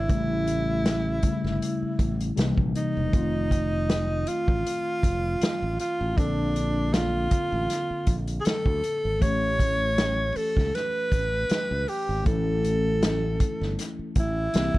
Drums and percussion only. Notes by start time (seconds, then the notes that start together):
0.09 kick, closed hi-hat
0.47 closed hi-hat
0.86 snare, closed hi-hat
1.23 kick, closed hi-hat
1.46 snare
1.62 closed hi-hat
1.99 kick, closed hi-hat
2.21 closed hi-hat
2.37 snare, closed hi-hat
2.58 kick
2.75 closed hi-hat
3.13 kick, closed hi-hat
3.51 kick, closed hi-hat
3.90 snare, closed hi-hat
4.27 closed hi-hat
4.48 kick
4.67 closed hi-hat
5.03 kick, closed hi-hat
5.41 snare, closed hi-hat
5.79 closed hi-hat
6.18 kick, closed hi-hat
6.56 closed hi-hat
6.94 snare, closed hi-hat
7.31 kick, closed hi-hat
7.70 snare, closed hi-hat
8.07 kick, closed hi-hat
8.28 closed hi-hat
8.45 snare, closed hi-hat
8.66 kick
8.84 closed hi-hat
9.22 kick, closed hi-hat
9.60 kick, closed hi-hat
9.98 snare, closed hi-hat
10.36 open hi-hat
10.57 kick, snare
10.75 snare, closed hi-hat
11.12 kick, closed hi-hat
11.49 snare, closed hi-hat
11.88 open hi-hat
12.26 kick, closed hi-hat
12.64 closed hi-hat
13.03 snare, closed hi-hat
13.40 kick, closed hi-hat
13.62 snare
13.79 snare, closed hi-hat
14.16 kick, closed hi-hat
14.54 snare, closed hi-hat
14.74 kick